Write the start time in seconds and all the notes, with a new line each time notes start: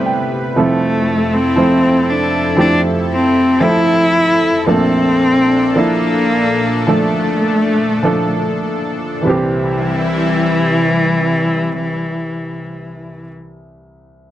Already playing: A1 A2 C3 G3 A3 B3 C4 E4 B4 C5 D5 E5
0.06 G5
0.56 F1 F2 F3 A3 C4 E4 A4
1.33 C4
1.56 F3 A3 C4 E4 C5
2.10 D4
2.56 F3 A3 C4 D4 E4 G4
3.12 C4
3.60 F3 A3 C4 E4 A4
4.66 A#1 A#2 F3 A3 A#3 C4 D4 A4
5.75 F3 A#3 D4 E4 A4
6.87 F3 A3 D4 A4
8.03 F3 A3 D4 A4
9.22 C3 E3 G3 E4
9.26 C2 E3 C4 G4